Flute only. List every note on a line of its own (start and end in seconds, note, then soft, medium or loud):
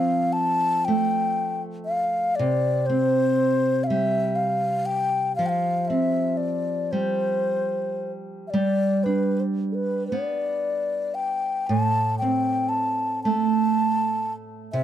0.00 0.34 F5 medium
0.33 0.86 A5 medium
0.85 1.62 G5 medium
1.85 2.37 F5 medium
2.35 2.88 D5 medium
2.86 3.85 C5 medium
3.84 4.37 E5 medium
3.84 3.88 F5 medium
4.36 4.87 F5 medium
4.86 5.35 G5 medium
5.36 5.47 F5 medium
5.46 5.85 F5 medium
5.46 5.50 G5 medium
5.85 6.39 E5 medium
5.85 5.88 F5 medium
6.37 6.93 D5 medium
6.91 8.11 C5 medium
8.47 9.05 D5 medium
8.47 8.50 E5 soft
9.04 9.37 B4 medium
9.37 9.40 B4 medium
9.37 9.42 C5 soft
9.72 9.75 A4 soft
9.72 10.07 B4 medium
10.07 11.16 D5 medium
11.14 11.68 G5 medium
11.67 12.18 A5 medium
12.18 12.70 G5 medium
12.69 13.22 A5 medium
13.23 14.33 A5 medium
14.72 14.84 E5 medium